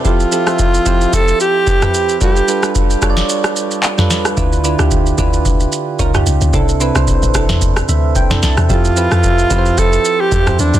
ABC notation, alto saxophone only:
X:1
M:4/4
L:1/16
Q:"Swing 16ths" 1/4=111
K:Flyd
V:1 name="Alto saxophone"
F8 A2 G6 | G4 z12 | z16 | z16 |
F8 A3 G3 D2 |]